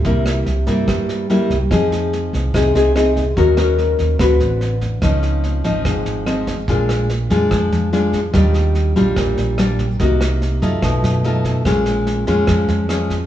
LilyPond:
<<
  \new Staff \with { instrumentName = "Nylon-string guitar" } { \time 4/4 \key c \mixolydian \tempo 4 = 145 << { <g bes e'>4 r8 <g bes e'>4. <g bes e'>8 r8 | \key f \minor <c' ees' aes'>2 <c' ees' aes'>8 <c' ees' aes'>8 <c' ees' aes'>8 r8 | <des' ges' bes'>8 <des' ges' bes'>4. <c' fis' b'>4. r8 | <f c' ees'>4. <f c' ees'>4. <f c' ees'>8 r8 |
<aes d' f'>4 r8 <aes d' f'>4. <aes d' f'>8 r8 | <g d' f'>4. <g d' f'>4. <g d' f'>8 r8 | <bes ees' ges'>4. <a ees' f'>4. <a dis' eis'>4 | <aes des' f'>4. <aes des' f'>4. <aes des' f'>8 r8 | } \\ { c2 g,2 | f2 c2 | ees2 d2 | des2 aes,2 |
bes,2 f2 | ees2 bes,2 | c2 b,2 | bes,2 f2 | } >> }
  \new Staff \with { instrumentName = "Fingered electric bass" } { \clef bass \time 4/4 \key c \mixolydian c,4 c,8 g,2 c,8 | \key f \minor f,4. c,8 c,8 c,4. | ees,4. ees,8 d,8 a,,4. | des,4. aes,,8 aes,,8 aes,,4. |
bes,,4. f,8 f,8 f,4. | ees,4. bes,,8 bes,,8 bes,,4. | c,4. ges,8 b,,8 fis,4. | bes,,4. f,8 f,8 f,4. | }
  \new DrumStaff \with { instrumentName = "Drums" } \drummode { \time 4/4 <bd sn>8 <ss sn>8 sn8 <bd sn>8 <bd ss sn>8 sn8 sn8 <bd sn>8 | <bd ss sn>8 sn8 sn8 <bd sn>8 <bd ss sn>8 sn8 <ss sn>8 <bd sn>8 | <bd sn>8 <ss sn>8 sn8 <bd sn>8 <bd ss sn>8 sn8 sn8 <bd sn>8 | <bd ss sn>8 sn8 sn8 <bd sn>8 <bd ss sn>8 sn8 <ss sn>8 <bd sn>8 |
<bd sn>8 <ss sn>8 sn8 <bd sn>8 <bd ss sn>8 sn8 sn8 <bd sn>8 | <bd ss sn>8 sn8 sn8 <bd sn>8 <bd ss sn>8 sn8 <ss sn>8 <bd sn>8 | <bd sn>8 <ss sn>8 sn8 <bd sn>8 <bd ss sn>8 sn8 sn8 <bd sn>8 | <bd ss sn>8 sn8 sn8 <bd sn>8 <bd ss sn>8 sn8 <ss sn>8 <bd sn>8 | }
>>